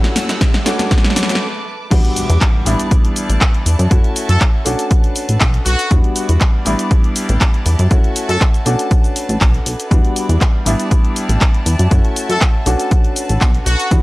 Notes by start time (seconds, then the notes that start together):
Already playing: A3 C#4 E4 F#4 A4 F#5 E6, riser
0.04 snare, closed hi-hat, tambourine
0.16 snare, open hi-hat, high conga, cabasa
0.29 F#2, snare, closed hi-hat, tambourine, cabasa
0.41 kick, snare, closed hi-hat, cabasa
0.54 snare
0.65 B1 A3 C#4 D4 F#4 B4 A5 D6, snare, open hi-hat, cabasa
0.79 snare, closed hi-hat, tambourine, high conga, cabasa
0.91 kick, snare, closed hi-hat, cabasa
0.98 snare
1.04 snare, closed hi-hat, tambourine
1.10 snare
1.16 D2, snare, open hi-hat, low conga, cabasa
1.23 snare
1.29 F#2, snare, closed hi-hat, tambourine, cabasa
1.35 snare
1.90 E2 G3 B3 D4 F#4 E5 D6, kick, closed hi-hat, crash, impact, cabasa
2.04 closed hi-hat
2.16 open hi-hat, cabasa
2.30 E2, closed hi-hat, cabasa
2.41 kick, clap, closed hi-hat, cabasa
2.65 A1 G3 B3 D4 E4 D5 A5, open hi-hat, cabasa
2.79 closed hi-hat, cabasa
2.91 kick, closed hi-hat, cabasa
3.04 closed hi-hat
3.16 open hi-hat, cabasa
3.29 A1, closed hi-hat, cabasa
3.41 kick, clap, closed hi-hat, cabasa
3.54 closed hi-hat
3.66 E2, open hi-hat, cabasa
3.79 F#2, closed hi-hat, cabasa
3.90 F#2 A3 C#4 E4 F#4 E5, kick, closed hi-hat, cabasa
4.04 closed hi-hat
4.16 open hi-hat, cabasa
4.29 F#2 A4, closed hi-hat, cabasa
4.41 kick, clap, closed hi-hat, cabasa
4.65 B1 A3 C#4 D4 F#4 B4, open hi-hat, cabasa
4.79 closed hi-hat, cabasa
4.91 kick, closed hi-hat, cabasa
5.04 closed hi-hat
5.16 open hi-hat, cabasa
5.29 A1, closed hi-hat, cabasa
5.41 B1, kick, clap, open hi-hat, cabasa
5.54 closed hi-hat
5.66 B1 F#4, open hi-hat, cabasa
5.79 closed hi-hat, cabasa
5.90 E2 G3 B3 D4 E4 F#4 D5, kick, closed hi-hat, cabasa
6.04 closed hi-hat
6.16 open hi-hat, cabasa
6.29 E2, closed hi-hat, cabasa
6.41 kick, clap, closed hi-hat, cabasa
6.65 A1 G3 B3 D4 E4 G4 A5, open hi-hat, cabasa
6.79 closed hi-hat, cabasa
6.91 kick, closed hi-hat, cabasa
7.04 closed hi-hat
7.16 open hi-hat, cabasa
7.29 A1, closed hi-hat, cabasa
7.41 kick, clap, closed hi-hat, cabasa
7.54 closed hi-hat
7.66 E2, open hi-hat, cabasa
7.79 F#2, closed hi-hat, cabasa
7.90 F#2 A3 C#4 E4 F#4 E5, kick, closed hi-hat, cabasa
8.04 closed hi-hat
8.16 open hi-hat, cabasa
8.29 F#2 A4, closed hi-hat, cabasa
8.41 kick, clap, closed hi-hat, cabasa
8.54 closed hi-hat, cabasa
8.65 B1 A3 C#4 D4 F#4 B4, open hi-hat, cabasa
8.79 closed hi-hat, cabasa
8.91 kick, closed hi-hat, cabasa
9.04 closed hi-hat, cabasa
9.16 open hi-hat, cabasa
9.29 A1, closed hi-hat, cabasa
9.41 B1, kick, clap, open hi-hat, cabasa
9.54 closed hi-hat
9.66 B1, open hi-hat, cabasa
9.80 closed hi-hat, cabasa
9.90 E2 G3 B3 D4 E4 F#4 D5, kick, closed hi-hat, cabasa
10.05 closed hi-hat
10.16 open hi-hat, cabasa
10.29 E2, closed hi-hat, cabasa
10.41 kick, clap, closed hi-hat, cabasa
10.65 A1 G3 B3 D4 E4 G4 D5 A5, open hi-hat, cabasa
10.80 closed hi-hat, cabasa
10.91 kick, closed hi-hat, cabasa
11.05 closed hi-hat
11.16 open hi-hat, cabasa
11.29 A1, closed hi-hat, cabasa
11.41 kick, clap, closed hi-hat, cabasa
11.54 closed hi-hat
11.66 E2, open hi-hat, cabasa
11.79 F#2, closed hi-hat, cabasa
11.90 F#2 A3 C#4 E4 F#4 E5, kick, closed hi-hat, cabasa
12.05 closed hi-hat
12.16 open hi-hat, cabasa
12.29 F#2 A4, closed hi-hat, cabasa
12.41 kick, clap, closed hi-hat, cabasa
12.66 B1 A3 C#4 D4 F#4 B4, open hi-hat, cabasa
12.79 closed hi-hat, cabasa
12.91 kick, closed hi-hat, cabasa
13.04 closed hi-hat
13.16 open hi-hat, cabasa
13.29 A1, closed hi-hat, cabasa
13.41 B1, kick, clap, open hi-hat, cabasa
13.54 closed hi-hat
13.66 B1 F#4, open hi-hat, cabasa
13.79 closed hi-hat, cabasa
13.90 E2 G3 B3 D4 E4 F#4 D5, kick, closed hi-hat, cabasa